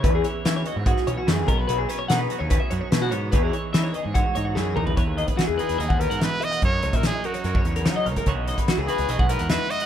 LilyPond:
<<
  \new Staff \with { instrumentName = "Clean electric guitar" } { \time 4/4 \key e \lydian \tempo 4 = 146 b'16 gis'16 cis''8 e''16 cis''16 dis''16 cis''16 fis'8 cis''16 fis'16 gis'8 ais'16 b'16 | b'16 gis'16 b'16 cis''16 fis''16 b'8 cis''16 b'16 e''16 cis''16 cis''16 b'16 fis'16 cis''8 | b'16 gis'16 cis''8 e''16 cis''16 dis''16 cis''16 fis'8 cis''16 fis'16 gis'8 ais'16 b'16 | cis''8 dis''16 b'16 fis'16 gis'16 b'8 dis''16 fis''16 b'16 fis''16 e''8 e''16 fis''16 |
e''16 dis''16 cis''16 e''8 dis''16 ais'16 cis''16 ais'16 cis''8 ais'16 cis''16 dis''16 cis''16 ais'16 | cis''8 dis''16 b'16 fis'16 gis'16 b'8 dis''16 fis''16 b'16 fis''16 e''8 e''16 fis''16 | }
  \new Staff \with { instrumentName = "Trumpet" } { \time 4/4 \key e \lydian r1 | r1 | r1 | r4. gis'4 ais'8 b'8 dis''8 |
cis''8. ais'16 gis'8 fis'4 r4. | r4. gis'4 ais'8 b'8 dis''16 r16 | }
  \new Staff \with { instrumentName = "Clean electric guitar" } { \time 4/4 \key e \lydian << { r4 cis'8 fis'8 gis'8 cis'4 r8 | r8 cis'8 dis'8 fis'16 gis'16 cis'4 cis'8 r8 | <e dis' gis' cis''>4 dis'8 gis'8 cis''8 dis'4 dis'8 | b'8 gis'4 dis'8 dis'2 |
ais'8 dis'4 dis'8 cis'4 dis'8 ais'8 | <e b dis' fis'>8 dis'4 fis'8 b4 dis'8 fis'8 | } \\ { <e, e>8 e2~ e8 e8 b,8 | fis2~ fis8 fis4 b,8 | e,8 e2~ e8 e4 | e,4 e4. b,4 e,8 |
fis,4 fis4. cis4. | cis4 e4. gis,4. | } >> }
  \new Staff \with { instrumentName = "Picked electric bass" } { \clef bass \time 4/4 \key e \lydian e,8 r8 e8 r16 gis,8 r16 b,,16 r16 fis,8 b,,8 | b,,8 r8 b,8 r16 dis,8 r16 fis,16 r16 b,8 gis,8 | e,8 r8 e8 r16 gis,8 r16 gis,8 fis,8 e,8 | e,16 dis,8 r8 e,16 r16 e,16 dis,16 dis,8 gis,8 r8. |
fis,8 cis,16 ais,8 r8. fis,8 e,8 fis8 cis,16 r16 | cis,16 b,,8 r8 cis,16 r16 cis,16 b,,16 b,,8 e,8 r8. | }
  \new DrumStaff \with { instrumentName = "Drums" } \drummode { \time 4/4 <hh bd>8 hh8 <hh sn>8 hh8 <hh bd>16 sn16 hh8 <hh sn>8 <hh bd>8 | hh8 hh8 <hh sn>8 hh8 <hh bd>8 hh8 <hh sn>8 hh8 | <hh bd>8 hh8 <hh sn>8 hh8 <hh bd>8 hh8 sn8 toml16 tomfh16 | <hh bd>8 hh16 <hh bd>16 <hh sn>8 hh16 hh16 hh16 bd16 hh16 hh16 <hh sn>8 hh16 hh16 |
<hh bd>8 hh16 <hh bd>16 <hh sn>8 hh16 hh16 hh16 bd16 hh16 hh16 <hh sn>8 hh16 <hh bd>16 | <hh bd>8 hh16 <hh bd>16 <hh sn>8 hh16 hh16 hh16 bd16 hh16 hh16 <hh sn>8 hh16 hh16 | }
>>